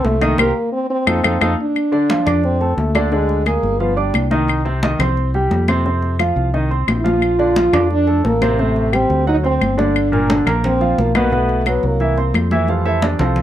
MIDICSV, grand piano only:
0, 0, Header, 1, 2, 480
1, 0, Start_track
1, 0, Key_signature, -2, "major"
1, 0, Tempo, 341491
1, 551, Time_signature, 4, 2, 24, 8
1, 18867, End_track
2, 0, Start_track
2, 0, Title_t, "Grand piano"
2, 0, Program_c, 0, 0
2, 0, Note_on_c, 0, 57, 63
2, 0, Note_on_c, 0, 69, 62
2, 0, Note_on_c, 0, 72, 67
2, 218, Note_off_c, 0, 57, 0
2, 219, Note_off_c, 0, 69, 0
2, 222, Note_off_c, 0, 72, 0
2, 298, Note_on_c, 0, 51, 85
2, 301, Note_on_c, 0, 63, 78
2, 303, Note_on_c, 0, 75, 85
2, 500, Note_off_c, 0, 51, 0
2, 502, Note_off_c, 0, 63, 0
2, 503, Note_off_c, 0, 75, 0
2, 537, Note_on_c, 0, 67, 91
2, 540, Note_on_c, 0, 70, 90
2, 541, Note_on_c, 0, 72, 88
2, 696, Note_off_c, 0, 67, 0
2, 698, Note_off_c, 0, 70, 0
2, 698, Note_off_c, 0, 72, 0
2, 1499, Note_on_c, 0, 63, 81
2, 1502, Note_on_c, 0, 65, 83
2, 1503, Note_on_c, 0, 69, 88
2, 1657, Note_off_c, 0, 63, 0
2, 1659, Note_off_c, 0, 65, 0
2, 1659, Note_off_c, 0, 69, 0
2, 1735, Note_on_c, 0, 65, 84
2, 1735, Note_on_c, 0, 69, 80
2, 1736, Note_on_c, 0, 63, 77
2, 1894, Note_off_c, 0, 63, 0
2, 1894, Note_off_c, 0, 65, 0
2, 1894, Note_off_c, 0, 69, 0
2, 1980, Note_on_c, 0, 69, 82
2, 1981, Note_on_c, 0, 63, 90
2, 1981, Note_on_c, 0, 65, 86
2, 2137, Note_off_c, 0, 69, 0
2, 2138, Note_off_c, 0, 63, 0
2, 2138, Note_off_c, 0, 65, 0
2, 2697, Note_on_c, 0, 50, 74
2, 2705, Note_on_c, 0, 74, 80
2, 2706, Note_on_c, 0, 62, 76
2, 2898, Note_off_c, 0, 50, 0
2, 2903, Note_off_c, 0, 62, 0
2, 2903, Note_off_c, 0, 74, 0
2, 2947, Note_on_c, 0, 53, 73
2, 2948, Note_on_c, 0, 65, 69
2, 2952, Note_on_c, 0, 77, 68
2, 3144, Note_off_c, 0, 53, 0
2, 3144, Note_off_c, 0, 65, 0
2, 3147, Note_off_c, 0, 77, 0
2, 3175, Note_on_c, 0, 62, 76
2, 3184, Note_on_c, 0, 74, 72
2, 3186, Note_on_c, 0, 86, 73
2, 3573, Note_off_c, 0, 62, 0
2, 3579, Note_off_c, 0, 74, 0
2, 3580, Note_off_c, 0, 86, 0
2, 3663, Note_on_c, 0, 57, 67
2, 3667, Note_on_c, 0, 69, 71
2, 3673, Note_on_c, 0, 81, 64
2, 4058, Note_off_c, 0, 57, 0
2, 4060, Note_off_c, 0, 69, 0
2, 4064, Note_off_c, 0, 81, 0
2, 4147, Note_on_c, 0, 50, 81
2, 4149, Note_on_c, 0, 62, 86
2, 4154, Note_on_c, 0, 74, 89
2, 4344, Note_off_c, 0, 50, 0
2, 4345, Note_off_c, 0, 62, 0
2, 4348, Note_off_c, 0, 74, 0
2, 4385, Note_on_c, 0, 50, 80
2, 4393, Note_on_c, 0, 62, 75
2, 4393, Note_on_c, 0, 74, 74
2, 4779, Note_off_c, 0, 50, 0
2, 4784, Note_off_c, 0, 62, 0
2, 4784, Note_off_c, 0, 74, 0
2, 4866, Note_on_c, 0, 56, 63
2, 4872, Note_on_c, 0, 68, 69
2, 4876, Note_on_c, 0, 80, 66
2, 5260, Note_off_c, 0, 56, 0
2, 5263, Note_off_c, 0, 68, 0
2, 5266, Note_off_c, 0, 80, 0
2, 5343, Note_on_c, 0, 53, 70
2, 5346, Note_on_c, 0, 65, 68
2, 5350, Note_on_c, 0, 77, 71
2, 5541, Note_off_c, 0, 53, 0
2, 5543, Note_off_c, 0, 65, 0
2, 5545, Note_off_c, 0, 77, 0
2, 5572, Note_on_c, 0, 62, 68
2, 5579, Note_on_c, 0, 74, 72
2, 5582, Note_on_c, 0, 86, 68
2, 5971, Note_off_c, 0, 62, 0
2, 5976, Note_off_c, 0, 74, 0
2, 5977, Note_off_c, 0, 86, 0
2, 6055, Note_on_c, 0, 51, 82
2, 6063, Note_on_c, 0, 63, 83
2, 6069, Note_on_c, 0, 75, 73
2, 6454, Note_off_c, 0, 51, 0
2, 6458, Note_off_c, 0, 63, 0
2, 6462, Note_off_c, 0, 75, 0
2, 6536, Note_on_c, 0, 48, 85
2, 6537, Note_on_c, 0, 60, 85
2, 6545, Note_on_c, 0, 72, 75
2, 6737, Note_off_c, 0, 48, 0
2, 6738, Note_off_c, 0, 60, 0
2, 6743, Note_off_c, 0, 72, 0
2, 6783, Note_on_c, 0, 51, 71
2, 6786, Note_on_c, 0, 63, 66
2, 6794, Note_on_c, 0, 75, 73
2, 6982, Note_off_c, 0, 51, 0
2, 6983, Note_off_c, 0, 63, 0
2, 6988, Note_off_c, 0, 75, 0
2, 7030, Note_on_c, 0, 60, 77
2, 7031, Note_on_c, 0, 72, 78
2, 7039, Note_on_c, 0, 84, 78
2, 7423, Note_off_c, 0, 60, 0
2, 7424, Note_off_c, 0, 72, 0
2, 7428, Note_off_c, 0, 84, 0
2, 7511, Note_on_c, 0, 55, 70
2, 7515, Note_on_c, 0, 67, 71
2, 7520, Note_on_c, 0, 79, 67
2, 7904, Note_off_c, 0, 55, 0
2, 7906, Note_off_c, 0, 67, 0
2, 7909, Note_off_c, 0, 79, 0
2, 7990, Note_on_c, 0, 48, 88
2, 7994, Note_on_c, 0, 60, 92
2, 7996, Note_on_c, 0, 72, 90
2, 8186, Note_off_c, 0, 48, 0
2, 8189, Note_off_c, 0, 60, 0
2, 8190, Note_off_c, 0, 72, 0
2, 8230, Note_on_c, 0, 48, 74
2, 8233, Note_on_c, 0, 60, 78
2, 8240, Note_on_c, 0, 72, 74
2, 8624, Note_off_c, 0, 48, 0
2, 8626, Note_off_c, 0, 60, 0
2, 8630, Note_off_c, 0, 72, 0
2, 8706, Note_on_c, 0, 53, 68
2, 8709, Note_on_c, 0, 65, 71
2, 8715, Note_on_c, 0, 77, 65
2, 9102, Note_off_c, 0, 53, 0
2, 9103, Note_off_c, 0, 65, 0
2, 9107, Note_off_c, 0, 77, 0
2, 9188, Note_on_c, 0, 51, 72
2, 9190, Note_on_c, 0, 63, 71
2, 9196, Note_on_c, 0, 75, 60
2, 9386, Note_off_c, 0, 51, 0
2, 9387, Note_off_c, 0, 63, 0
2, 9391, Note_off_c, 0, 75, 0
2, 9424, Note_on_c, 0, 60, 69
2, 9427, Note_on_c, 0, 72, 67
2, 9431, Note_on_c, 0, 84, 66
2, 9821, Note_off_c, 0, 60, 0
2, 9823, Note_off_c, 0, 72, 0
2, 9825, Note_off_c, 0, 84, 0
2, 9895, Note_on_c, 0, 53, 67
2, 9900, Note_on_c, 0, 65, 81
2, 9906, Note_on_c, 0, 77, 75
2, 10296, Note_off_c, 0, 53, 0
2, 10299, Note_off_c, 0, 65, 0
2, 10302, Note_off_c, 0, 77, 0
2, 10385, Note_on_c, 0, 50, 73
2, 10392, Note_on_c, 0, 62, 80
2, 10393, Note_on_c, 0, 74, 82
2, 10585, Note_off_c, 0, 50, 0
2, 10589, Note_off_c, 0, 62, 0
2, 10590, Note_off_c, 0, 74, 0
2, 10628, Note_on_c, 0, 53, 61
2, 10629, Note_on_c, 0, 65, 71
2, 10636, Note_on_c, 0, 77, 67
2, 10827, Note_off_c, 0, 53, 0
2, 10828, Note_off_c, 0, 65, 0
2, 10832, Note_off_c, 0, 77, 0
2, 10868, Note_on_c, 0, 62, 73
2, 10869, Note_on_c, 0, 74, 72
2, 10874, Note_on_c, 0, 86, 70
2, 11264, Note_off_c, 0, 62, 0
2, 11265, Note_off_c, 0, 74, 0
2, 11268, Note_off_c, 0, 86, 0
2, 11343, Note_on_c, 0, 57, 62
2, 11348, Note_on_c, 0, 69, 71
2, 11353, Note_on_c, 0, 81, 71
2, 11742, Note_off_c, 0, 57, 0
2, 11745, Note_off_c, 0, 69, 0
2, 11747, Note_off_c, 0, 81, 0
2, 11828, Note_on_c, 0, 48, 94
2, 11833, Note_on_c, 0, 60, 88
2, 11835, Note_on_c, 0, 72, 83
2, 12028, Note_off_c, 0, 48, 0
2, 12031, Note_off_c, 0, 60, 0
2, 12032, Note_off_c, 0, 72, 0
2, 12075, Note_on_c, 0, 48, 81
2, 12078, Note_on_c, 0, 60, 79
2, 12079, Note_on_c, 0, 72, 80
2, 12469, Note_off_c, 0, 48, 0
2, 12470, Note_off_c, 0, 60, 0
2, 12471, Note_off_c, 0, 72, 0
2, 12544, Note_on_c, 0, 55, 72
2, 12547, Note_on_c, 0, 67, 66
2, 12554, Note_on_c, 0, 79, 67
2, 12943, Note_off_c, 0, 55, 0
2, 12944, Note_off_c, 0, 67, 0
2, 12949, Note_off_c, 0, 79, 0
2, 13025, Note_on_c, 0, 54, 68
2, 13032, Note_on_c, 0, 66, 72
2, 13033, Note_on_c, 0, 78, 75
2, 13226, Note_off_c, 0, 54, 0
2, 13230, Note_off_c, 0, 66, 0
2, 13231, Note_off_c, 0, 78, 0
2, 13259, Note_on_c, 0, 60, 67
2, 13265, Note_on_c, 0, 72, 69
2, 13266, Note_on_c, 0, 84, 65
2, 13660, Note_off_c, 0, 60, 0
2, 13664, Note_off_c, 0, 72, 0
2, 13664, Note_off_c, 0, 84, 0
2, 13741, Note_on_c, 0, 50, 82
2, 13744, Note_on_c, 0, 62, 77
2, 13746, Note_on_c, 0, 74, 80
2, 14141, Note_off_c, 0, 50, 0
2, 14143, Note_off_c, 0, 62, 0
2, 14144, Note_off_c, 0, 74, 0
2, 14226, Note_on_c, 0, 46, 88
2, 14231, Note_on_c, 0, 58, 76
2, 14236, Note_on_c, 0, 70, 78
2, 14427, Note_off_c, 0, 46, 0
2, 14430, Note_off_c, 0, 58, 0
2, 14433, Note_off_c, 0, 70, 0
2, 14470, Note_on_c, 0, 50, 71
2, 14475, Note_on_c, 0, 62, 70
2, 14478, Note_on_c, 0, 74, 76
2, 14669, Note_off_c, 0, 50, 0
2, 14672, Note_off_c, 0, 62, 0
2, 14674, Note_off_c, 0, 74, 0
2, 14706, Note_on_c, 0, 58, 79
2, 14711, Note_on_c, 0, 70, 75
2, 14713, Note_on_c, 0, 82, 75
2, 15104, Note_off_c, 0, 58, 0
2, 15107, Note_off_c, 0, 70, 0
2, 15108, Note_off_c, 0, 82, 0
2, 15192, Note_on_c, 0, 53, 74
2, 15196, Note_on_c, 0, 65, 70
2, 15198, Note_on_c, 0, 77, 72
2, 15588, Note_off_c, 0, 53, 0
2, 15590, Note_off_c, 0, 65, 0
2, 15591, Note_off_c, 0, 77, 0
2, 15673, Note_on_c, 0, 47, 85
2, 15675, Note_on_c, 0, 59, 90
2, 15681, Note_on_c, 0, 71, 82
2, 15871, Note_off_c, 0, 47, 0
2, 15873, Note_off_c, 0, 59, 0
2, 15876, Note_off_c, 0, 71, 0
2, 15909, Note_on_c, 0, 47, 76
2, 15916, Note_on_c, 0, 59, 79
2, 15920, Note_on_c, 0, 71, 78
2, 16306, Note_off_c, 0, 47, 0
2, 16310, Note_off_c, 0, 59, 0
2, 16312, Note_off_c, 0, 71, 0
2, 16394, Note_on_c, 0, 54, 68
2, 16397, Note_on_c, 0, 66, 68
2, 16405, Note_on_c, 0, 78, 63
2, 16788, Note_off_c, 0, 54, 0
2, 16790, Note_off_c, 0, 66, 0
2, 16795, Note_off_c, 0, 78, 0
2, 16867, Note_on_c, 0, 52, 65
2, 16874, Note_on_c, 0, 64, 71
2, 16879, Note_on_c, 0, 76, 65
2, 17068, Note_off_c, 0, 52, 0
2, 17071, Note_off_c, 0, 64, 0
2, 17074, Note_off_c, 0, 76, 0
2, 17111, Note_on_c, 0, 60, 67
2, 17117, Note_on_c, 0, 72, 73
2, 17117, Note_on_c, 0, 84, 72
2, 17506, Note_off_c, 0, 60, 0
2, 17510, Note_off_c, 0, 72, 0
2, 17510, Note_off_c, 0, 84, 0
2, 17590, Note_on_c, 0, 52, 76
2, 17595, Note_on_c, 0, 64, 76
2, 17598, Note_on_c, 0, 76, 78
2, 17789, Note_off_c, 0, 52, 0
2, 17792, Note_off_c, 0, 64, 0
2, 17794, Note_off_c, 0, 76, 0
2, 17823, Note_on_c, 0, 52, 50
2, 17832, Note_on_c, 0, 55, 48
2, 17836, Note_on_c, 0, 77, 74
2, 17838, Note_on_c, 0, 57, 59
2, 17840, Note_on_c, 0, 69, 65
2, 17840, Note_on_c, 0, 72, 59
2, 17843, Note_on_c, 0, 65, 59
2, 18054, Note_off_c, 0, 69, 0
2, 18058, Note_off_c, 0, 72, 0
2, 18069, Note_off_c, 0, 77, 0
2, 18069, Note_on_c, 0, 76, 83
2, 18072, Note_off_c, 0, 65, 0
2, 18075, Note_on_c, 0, 69, 73
2, 18078, Note_on_c, 0, 64, 69
2, 18079, Note_on_c, 0, 72, 68
2, 18305, Note_off_c, 0, 76, 0
2, 18308, Note_off_c, 0, 69, 0
2, 18309, Note_off_c, 0, 64, 0
2, 18310, Note_off_c, 0, 72, 0
2, 18311, Note_on_c, 0, 74, 74
2, 18316, Note_on_c, 0, 62, 65
2, 18513, Note_off_c, 0, 52, 0
2, 18517, Note_off_c, 0, 55, 0
2, 18521, Note_off_c, 0, 57, 0
2, 18546, Note_off_c, 0, 74, 0
2, 18548, Note_off_c, 0, 62, 0
2, 18556, Note_on_c, 0, 72, 78
2, 18558, Note_on_c, 0, 65, 66
2, 18560, Note_on_c, 0, 60, 63
2, 18561, Note_on_c, 0, 69, 64
2, 18788, Note_off_c, 0, 72, 0
2, 18789, Note_off_c, 0, 65, 0
2, 18790, Note_off_c, 0, 60, 0
2, 18791, Note_off_c, 0, 69, 0
2, 18867, End_track
0, 0, End_of_file